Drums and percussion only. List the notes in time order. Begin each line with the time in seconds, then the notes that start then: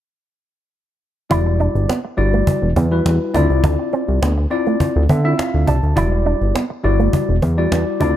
1.31 cajon bass
1.60 cajon slap
1.75 cajon slap
1.89 cajon slap
2.04 cajon slap
2.18 cajon slap
2.33 cajon slap
2.47 cajon bass
2.76 cajon bass
2.91 cajon slap
3.06 cajon slap
3.35 cajon bass
3.50 cajon slap
3.64 cajon bass
3.93 cajon slap
4.09 cajon slap
4.23 cajon slap
4.37 cajon slap
4.51 cajon slap
4.67 cajon slap
4.80 cajon bass
5.09 cajon bass
5.25 cajon slap
5.39 cajon slap
5.68 cajon bass
5.83 cajon slap
5.97 cajon bass
6.26 cajon slap
6.42 cajon slap
6.56 cajon slap
6.70 cajon slap
6.84 cajon slap
7.00 cajon slap
7.13 cajon bass
7.42 cajon bass
7.58 cajon slap
7.72 cajon slap
8.01 cajon bass